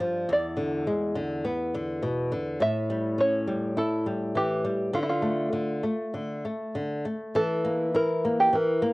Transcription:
Already playing: G2 D5
0.00 F3
0.29 E2 D5
0.57 D3
0.87 G#3
1.15 D3
1.45 B3
1.75 D3
2.03 B2
2.32 D3
2.60 A2 E5
2.90 G3
3.18 C#4 C#5
3.47 G3
3.77 E4 A4
4.06 G3
4.35 E3 G4
4.64 G3
4.93 D3 F4
5.03 E4
5.09 F4
5.22 A3
5.52 D3
5.83 A3
6.14 D3
6.45 A3
6.75 D3
7.05 A3
7.35 E3 A4
7.65 A#3
7.95 E4 A#4
8.25 A#3
8.40 G4
8.53 E3 A#4
8.82 A#3

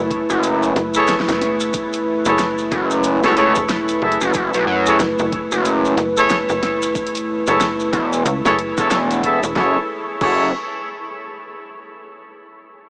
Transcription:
Already playing: F#1 A3 E4 B4
0.11 kick, closed hi-hat
0.30 F#1, maracas
0.43 closed hi-hat, maracas
0.63 maracas
0.76 F#1, snare, closed hi-hat
0.94 E4 G#4 A4 C#5, maracas
1.07 snare, closed hi-hat, maracas
1.20 snare
1.28 F#1, snare, closed hi-hat, maracas
1.41 snare, closed hi-hat
1.60 maracas
1.73 kick, closed hi-hat, maracas
1.93 closed hi-hat, maracas
2.25 F#1 E4 G#4 A4 C#5, closed hi-hat, maracas
2.38 snare, closed hi-hat, maracas
2.58 maracas
2.72 F#1, kick, snare, closed hi-hat
2.91 maracas
3.04 closed hi-hat, maracas
3.23 F#1 E4 G#4 A4 C#5, snare, maracas
3.26 snare
3.27 snare
3.29 snare
3.31 snare
3.33 snare
3.35 C#2 E4 G#4 A4 C#5, snare, closed hi-hat
3.55 E1, kick, maracas
3.69 snare, closed hi-hat, maracas
3.88 closed hi-hat, maracas
4.02 F#1 E4 G#4 A4 E5, kick
4.12 closed hi-hat
4.21 F#1, maracas
4.34 F#1, kick, closed hi-hat, maracas
4.54 B1, closed hi-hat, maracas
4.67 F#2
4.86 E4 G#4 A4 C#5, closed hi-hat, maracas
4.99 F#1, snare, closed hi-hat, maracas
5.19 F#1, maracas
5.32 kick, closed hi-hat
5.52 F#1, maracas
5.65 closed hi-hat, maracas
5.85 maracas
5.97 F#1, snare, closed hi-hat
6.17 E4 G#4 A4 C#5, maracas
6.29 snare, closed hi-hat, maracas
6.49 F#1, maracas
6.63 snare, closed hi-hat
6.82 maracas
6.95 kick, closed hi-hat, maracas
7.07 closed hi-hat
7.15 closed hi-hat, maracas
7.17 closed hi-hat
7.47 F#1 E4 G#4 A4 C#5, closed hi-hat, maracas
7.60 snare, closed hi-hat, maracas
7.80 maracas
7.93 E1, kick, snare, closed hi-hat
8.13 maracas
8.25 C#2, closed hi-hat, maracas
8.45 F#1 E4 G#4 A4 C#5, snare, maracas
8.59 closed hi-hat
8.77 E1 E4 G#4 A4 C#5, kick, closed hi-hat, maracas
8.90 snare, closed hi-hat, maracas
9.11 closed hi-hat, maracas
9.23 E4 G#4 A4 E5, kick, closed hi-hat
9.43 E1, maracas
9.56 F#1 E4 G#4 A4 C#5, kick, snare
10.21 F#1 E4 G#4 A4 C#5, kick, crash

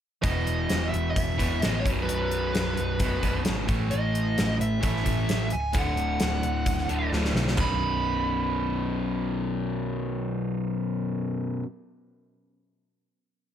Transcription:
0.22 E1 E2 B2 E3 D#5, kick, closed hi-hat
0.47 closed hi-hat
0.70 E1, snare, closed hi-hat
0.89 E5
0.94 E1, closed hi-hat
1.11 E5
1.16 E1, kick, closed hi-hat
1.38 E1 E2 B2 E3, kick, closed hi-hat
1.62 A1 E2 B2 E3 D#5, snare, closed hi-hat
1.80 C#5
1.85 B0 B1 F#2 B2, kick, closed hi-hat
2.03 B4
2.09 B0, closed hi-hat
2.31 closed hi-hat
2.55 B0, snare, closed hi-hat
2.77 B0, closed hi-hat
3.00 B0 B1 F#2 B2, kick, closed hi-hat
3.22 B0 B1 F#2 B2, kick, closed hi-hat
3.45 G#1, snare, closed hi-hat
3.67 A1 A2 E3 A3, kick, closed hi-hat
3.91 A1 D#5, closed hi-hat
4.15 closed hi-hat
4.38 A1, snare, closed hi-hat
4.61 A1 E5, closed hi-hat
4.81 A1 A2 E3 A3, kick, closed hi-hat
4.85 E5
4.96 snare
5.04 A1 A2 E3 A3, kick, closed hi-hat
5.29 A1, snare, closed hi-hat
5.50 C#1 G#5, closed hi-hat
5.73 D1 D2 A2 D3, kick, closed hi-hat
5.79 F#5
5.97 closed hi-hat
6.20 D1, snare, closed hi-hat
6.43 D1, closed hi-hat
6.66 D1, kick, closed hi-hat
6.78 snare
6.89 D1 D2 A2 D3, closed hi-hat
7.11 D1 D2 A2 D3, snare
7.25 snare
7.34 B1, snare
7.48 snare
7.56 B0 B1 F#2 B2, kick, floor tom, splash
7.60 B5

